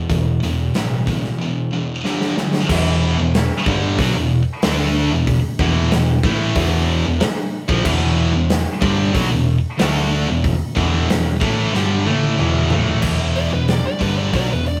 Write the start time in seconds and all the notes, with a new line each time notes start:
0.10 E1 E2 B2, kick, open hi-hat
0.43 E1 E2 B2, snare, open hi-hat
0.74 A1 E2 B2, snare, open hi-hat
1.07 E2 B2, kick, open hi-hat
1.24 snare
1.39 E2 B2
1.72 E2 B2
2.05 G2 D3 G3, snare
2.21 snare
2.37 G2 D3, snare
2.54 snare
2.69 E1 E2 B2 E3, kick, crash
3.18 E1 E2 B2
3.34 snare, open hi-hat
3.66 G1 G2 D3 G3, kick
3.99 B1 B2 F#3, kick, open hi-hat
4.14 E1 E2 B2
4.62 D2 D3 A3 D4, snare, open hi-hat
5.12 E1 E2 B2
5.27 kick, open hi-hat
5.59 E1 E2 B2 E3, kick
5.91 E1 E2 B2, snare, open hi-hat
6.23 A1 A2 E3 A3, kick
6.55 E1 E2 B2 E3, kick, open hi-hat
7.05 E1 E2 B2
7.20 muted distorted electric guitar stroke, muted picked electric bass stroke, snare, open hi-hat
7.68 A#1 A#2 F3, kick
7.84 E1 E2 B2 E3, kick, crash
8.32 E1 E2 B2
8.50 snare, open hi-hat
8.81 G1 G2 D3 G3, kick
9.13 B1 B2 F#3, kick, open hi-hat
9.30 E1 E2 B2
9.78 D2 D3 A3 D4, snare, open hi-hat
10.28 E1 E2 B2
10.44 kick, open hi-hat
10.76 E1 E2 B2 E3, kick
11.09 E1 E2 B2, snare, open hi-hat
11.41 A1 A2 E3 A3, kick
11.72 G1 G2 D3 G3, snare
12.05 A1 A2 E3 A3, high tom
12.23 high tom
12.39 E1 E2 B2 E3, mid tom
12.70 A1 A2 E3 A3, floor tom
12.87 floor tom
13.02 E1 E2 B2 E3, kick, crash
13.36 D5, open hi-hat
13.52 E1 E2 B2 B4
13.68 D5, snare, open hi-hat
13.87 D5
14.00 G1 G2 D3 G3 B4, kick, open hi-hat
14.19 D5
14.33 B1 B2 F#3 D5, kick, open hi-hat
14.51 E1 E2 B2 B4
14.66 D5, open hi-hat